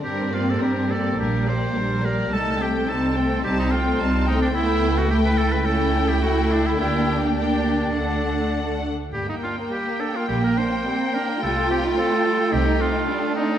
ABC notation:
X:1
M:4/4
L:1/16
Q:1/4=106
K:Gm
V:1 name="Violin section"
B2 d2 B2 d2 B2 d2 B2 d2 | a2 g2 a2 g2 a2 g2 a2 g2 | g4 g4 g8 | g4 g4 ^f6 z2 |
g16- | g16 |]
V:2 name="Oboe"
G2 F A G2 A2 G2 c4 B2 | A2 G2 A4 G E F4 E D | =E3 ^F G =B A B A3 G F2 D E | =E3 z D8- D2 z2 |
G E F2 G2 A F G B c4 B2 | A2 G2 A4 G2 F4 E2 |]
V:3 name="Cello section"
C8 B,4 G,4 | A,4 C12 | =B,4 A,4 ^C4 =E4 | D12- D2 z2 |
z8 B,4 C2 D2 | F8 E4 D4 |]
V:4 name="Violin section"
D2 G2 D2 G2 D2 G2 D2 G2 | E2 C2 E2 C2 E2 C2 E2 C2 | =E4 E4 E8 | G4 G4 D6- D z |
G, B, D B, G, B, D B, G, B, D B, G, B, D B, | G, A, C E C A, G, A, C E C A, G, A, C E |]
V:5 name="Viola section"
G,2 B,2 G,2 B,2 G,2 B,2 G,2 B,2 | G,2 A,2 G,2 A,2 G,2 A,2 G,2 A,2 | A,4 A,4 A,8 | B,4 B,4 A,6 z2 |
B,16 | A,16 |]
V:6 name="Double bass section" clef=bass
G,,4 G,,4 B,,,4 B,,,4 | C,,4 C,,4 C,,4 C,,4 | ^C,,16 | D,,8 D,,6 z2 |
G,,,4 z4 B,,,4 z4 | C,,4 z4 C,,4 z4 |]